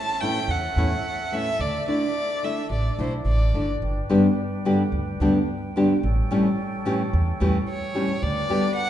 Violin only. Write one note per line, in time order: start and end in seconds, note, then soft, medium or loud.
0.00 0.22 A5 loud
0.21 0.53 G5 loud
0.51 1.35 F#5 medium
1.34 1.62 E5 medium
1.61 1.88 D5 medium
1.89 2.46 D5 medium
2.44 2.71 E5 medium
2.73 2.98 D5 medium
3.01 3.12 C5 medium
3.27 3.66 D5 medium
7.70 8.24 C#5 medium
8.23 8.76 D5 loud
8.76 8.90 F#5 loud